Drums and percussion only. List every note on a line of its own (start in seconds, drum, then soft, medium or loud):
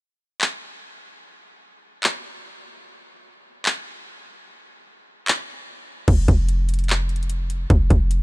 0.41 clap loud
2.04 clap loud
3.66 clap loud
5.28 clap loud
6.08 kick loud
6.08 closed hi-hat medium
6.08 crash loud
6.28 kick medium
6.28 closed hi-hat medium
6.49 closed hi-hat medium
6.69 closed hi-hat medium
6.74 closed hi-hat medium
6.79 closed hi-hat medium
6.84 closed hi-hat soft
6.89 clap loud
6.89 closed hi-hat medium
7.09 closed hi-hat soft
7.16 closed hi-hat medium
7.23 closed hi-hat medium
7.30 closed hi-hat medium
7.50 closed hi-hat medium
7.70 kick loud
7.70 closed hi-hat loud
7.90 kick medium
7.90 closed hi-hat medium
8.11 closed hi-hat medium